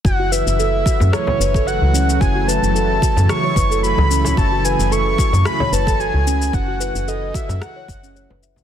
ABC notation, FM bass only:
X:1
M:4/4
L:1/16
Q:"Swing 16ths" 1/4=111
K:F#m
V:1 name="FM bass" clef=bass
F,,,3 F,,,3 z F,, z2 F,,,3 C,,3 | F,,,3 F,,,3 z F,, z2 F,,,3 C,,3 | F,,,3 F,,,3 z F,, z2 F,,,3 C,,3 | F,,,3 F,,,3 z F,, z2 F,,,3 F,,,3 |]